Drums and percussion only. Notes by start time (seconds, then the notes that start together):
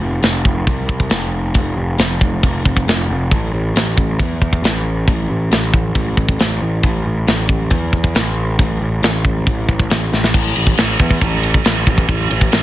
0.23 snare, open hi-hat
0.45 kick
0.67 kick, open hi-hat
0.89 kick
1.00 kick
1.10 snare, open hi-hat
1.54 kick, open hi-hat
1.98 snare, open hi-hat
2.21 kick
2.43 kick, open hi-hat
2.65 kick
2.77 kick
2.88 snare, open hi-hat
3.31 kick, open hi-hat
3.76 snare, open hi-hat
3.98 kick
4.19 kick, open hi-hat
4.42 kick
4.53 kick
4.64 snare, open hi-hat
5.08 kick, open hi-hat
5.51 snare, open hi-hat
5.74 kick
5.95 kick, open hi-hat
6.17 kick
6.29 kick
6.39 snare, open hi-hat
6.83 kick, open hi-hat
7.27 snare, open hi-hat
7.49 kick
7.70 kick, open hi-hat
7.93 kick
8.04 kick
8.15 snare, open hi-hat
8.59 kick, open hi-hat
9.03 snare, open hi-hat
9.25 kick
9.47 kick, open hi-hat
9.69 kick
9.79 kick
9.90 snare, open hi-hat
10.13 snare
10.24 snare
10.34 kick, crash
10.56 ride
10.67 kick
10.77 snare, ride
10.99 kick, ride
11.11 kick
11.21 kick, ride
11.43 ride
11.54 kick
11.65 snare, ride
11.87 kick, ride
11.98 kick
12.09 kick, ride
12.31 ride
12.41 kick
12.52 snare, ride